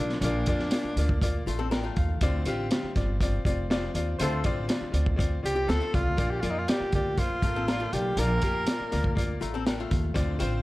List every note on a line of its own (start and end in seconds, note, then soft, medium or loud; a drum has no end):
0.00 0.19 B1 medium
0.00 0.17 A#3 medium
0.00 0.20 D4 medium
0.00 0.18 F4 medium
0.00 0.18 D5 medium
0.09 snare soft
0.21 0.43 A#1 loud
0.21 0.94 A#2 medium
0.21 0.42 A#3 medium
0.21 1.17 D4 medium
0.21 0.42 F4 medium
0.21 closed hi-hat loud
0.25 0.43 D5 loud
0.46 0.68 F2 medium
0.46 0.67 A#3 medium
0.46 0.67 F4 medium
0.46 0.68 D5 loud
0.46 kick medium
0.46 closed hi-hat medium
0.59 snare soft
0.71 0.91 A#3 medium
0.71 0.92 F4 medium
0.71 0.92 D5 medium
0.71 snare loud
0.71 closed hi-hat loud
0.84 muted upright bass stroke soft
0.96 1.38 D2 medium
0.96 1.17 A#3 medium
0.96 1.17 F4 medium
0.96 1.17 D5 loud
0.96 closed hi-hat medium
1.09 kick medium
1.22 1.41 A#3 medium
1.22 1.42 F4 medium
1.22 1.42 D5 medium
1.22 kick medium
1.22 closed hi-hat medium
1.46 1.88 A1 medium
1.46 1.59 A3 medium
1.46 1.59 F4 medium
1.46 1.71 C6 medium
1.46 closed hi-hat medium
1.59 1.71 C4 medium
1.59 1.71 A4 medium
1.71 1.83 D4 medium
1.71 1.83 A#4 medium
1.71 1.96 G5 medium
1.71 1.96 A#5 medium
1.71 snare loud
1.71 closed hi-hat medium
1.84 2.20 A3 medium
1.84 2.19 F4 medium
1.96 2.18 D#2 medium
1.96 2.20 F5 medium
1.96 kick medium
1.96 closed hi-hat medium
2.21 2.42 D2 loud
2.21 2.92 D3 medium
2.21 2.41 C4 loud
2.21 2.41 F4 loud
2.21 2.42 D5 loud
2.21 kick medium
2.21 closed hi-hat medium
2.45 2.67 A1 medium
2.45 2.66 C4 loud
2.45 2.66 F4 loud
2.45 2.66 G4 loud
2.45 closed hi-hat medium
2.71 2.90 C4 medium
2.71 2.91 F4 medium
2.71 2.91 G4 medium
2.71 snare loud
2.71 closed hi-hat loud
2.83 muted upright bass stroke soft
2.95 3.38 G1 medium
2.95 3.15 C4 medium
2.95 3.15 F4 medium
2.95 3.16 D5 medium
2.95 kick medium
2.95 snare soft
2.95 closed hi-hat medium
3.21 3.40 C4 medium
3.21 3.41 F4 medium
3.21 3.41 D5 medium
3.21 kick medium
3.21 closed hi-hat medium
3.45 3.87 F1 medium
3.45 3.65 C4 medium
3.45 3.65 F4 medium
3.45 3.65 D5 medium
3.45 kick medium
3.45 closed hi-hat medium
3.70 3.90 C4 loud
3.70 3.90 F4 medium
3.70 3.91 D5 loud
3.70 snare loud
3.70 closed hi-hat medium
3.94 4.15 D#2 medium
3.94 4.14 C4 medium
3.94 4.15 F4 medium
3.94 4.15 D5 medium
3.94 closed hi-hat medium
4.19 4.41 D2 medium
4.19 4.91 D3 medium
4.19 4.55 A3 medium
4.19 4.39 C4 loud
4.19 4.55 F4 medium
4.19 4.40 F4 medium
4.19 4.41 A4 loud
4.19 4.55 C5 medium
4.19 closed hi-hat medium
4.44 4.66 A1 medium
4.44 4.64 C4 loud
4.44 4.64 F4 loud
4.44 4.65 D5 loud
4.44 kick medium
4.44 closed hi-hat medium
4.68 4.88 C4 medium
4.68 4.89 F4 medium
4.68 4.89 D5 medium
4.68 snare loud
4.68 closed hi-hat loud
4.81 muted upright bass stroke soft
4.92 5.36 D2 medium
4.92 5.13 C4 medium
4.92 5.13 F4 medium
4.92 5.14 D5 medium
4.92 closed hi-hat medium
5.06 kick medium
5.16 5.37 C4 medium
5.16 5.38 F4 medium
5.16 5.38 D5 medium
5.16 kick medium
5.16 closed hi-hat medium
5.43 5.65 C2 medium
5.43 5.63 C4 medium
5.43 5.63 F4 medium
5.43 5.72 G4 medium
5.43 5.63 D5 medium
5.43 closed hi-hat medium
5.56 5.68 G4 medium
5.67 5.79 D2 medium
5.67 5.88 C4 medium
5.67 5.81 C4 medium
5.67 5.88 F4 medium
5.67 5.88 A4 medium
5.67 5.81 A4 medium
5.67 5.96 A4 medium
5.67 snare loud
5.67 closed hi-hat medium
5.82 6.17 A3 medium
5.82 6.17 F4 medium
5.93 6.04 C2 medium
5.93 6.13 C4 medium
5.93 6.14 F4 medium
5.93 6.32 F4 medium
5.93 6.14 D5 medium
5.93 kick medium
5.93 closed hi-hat medium
6.06 6.16 D2 medium
6.17 6.39 A#1 loud
6.17 6.89 A#2 medium
6.17 6.37 A#3 loud
6.17 6.38 F4 medium
6.17 6.38 D5 loud
6.17 kick loud
6.17 closed hi-hat loud
6.31 6.43 G4 medium
6.41 6.64 F2 medium
6.41 6.63 A#3 loud
6.41 6.52 F4 medium
6.41 6.63 F4 medium
6.41 6.63 D5 medium
6.41 closed hi-hat medium
6.50 6.60 D#4 medium
6.58 6.70 F4 medium
6.68 6.88 A#3 medium
6.68 6.88 F4 medium
6.68 6.93 G4 medium
6.68 6.88 D5 medium
6.68 snare loud
6.68 closed hi-hat medium
6.80 muted upright bass stroke soft
6.92 7.14 D2 medium
6.92 7.13 A#3 medium
6.92 7.13 F4 medium
6.92 7.21 G4 medium
6.92 7.14 D5 medium
6.92 kick medium
6.92 closed hi-hat medium
7.17 7.37 A#3 medium
7.17 7.38 F4 medium
7.17 7.95 F4 medium
7.17 7.38 C5 medium
7.17 kick medium
7.17 closed hi-hat loud
7.30 muted upright bass stroke soft
7.42 7.85 A1 medium
7.42 7.55 A3 medium
7.42 7.63 A#3 medium
7.42 7.55 F4 medium
7.42 7.63 F4 medium
7.42 7.64 A#4 medium
7.42 kick medium
7.42 closed hi-hat medium
7.56 7.68 C4 medium
7.56 7.67 A4 medium
7.68 7.88 A#3 medium
7.68 7.80 D4 medium
7.68 7.88 F4 medium
7.68 7.80 A#4 medium
7.68 7.88 D5 medium
7.68 snare loud
7.68 closed hi-hat medium
7.80 8.16 A3 medium
7.80 8.15 F4 medium
7.93 8.14 B1 medium
7.93 8.13 A#3 medium
7.93 8.13 F4 medium
7.93 8.20 G4 medium
7.93 8.13 D5 medium
7.93 closed hi-hat medium
8.17 8.38 A#1 loud
8.17 8.89 A#2 medium
8.17 8.37 A#3 loud
8.17 8.37 F4 medium
8.17 9.17 A#4 medium
8.17 8.38 D5 loud
8.17 closed hi-hat medium
8.42 8.62 A#3 loud
8.42 8.62 F4 medium
8.42 8.62 G4 loud
8.42 kick medium
8.42 closed hi-hat medium
8.66 8.86 A#3 medium
8.66 8.87 F4 medium
8.66 8.87 D5 medium
8.66 snare loud
8.66 closed hi-hat loud
8.80 muted upright bass stroke soft
8.91 9.34 D2 medium
8.91 9.11 A#3 medium
8.91 9.11 F4 medium
8.91 9.12 D5 medium
8.91 snare soft
8.91 closed hi-hat medium
9.04 kick medium
9.15 9.36 A#3 medium
9.15 9.36 F4 medium
9.15 9.36 D5 medium
9.15 kick medium
9.15 closed hi-hat loud
9.41 9.83 A1 medium
9.41 9.53 A3 medium
9.41 9.53 F4 medium
9.41 9.65 A#5 medium
9.41 closed hi-hat medium
9.54 9.66 C4 medium
9.54 9.66 A4 medium
9.66 9.79 D4 medium
9.66 9.79 A#4 medium
9.66 9.90 G5 medium
9.66 snare loud
9.66 closed hi-hat medium
9.80 10.15 A3 medium
9.80 10.15 F4 medium
9.90 10.12 D#2 loud
9.90 10.38 F5 medium
9.90 kick medium
9.90 closed hi-hat medium
10.14 10.37 D2 loud
10.14 10.62 D3 medium
10.14 10.35 C4 loud
10.14 10.35 F4 loud
10.14 10.35 D5 loud
10.14 kick medium
10.14 closed hi-hat loud
10.39 10.62 A1 medium
10.39 10.60 C4 loud
10.39 10.60 F4 loud
10.39 10.60 C5 loud
10.39 closed hi-hat medium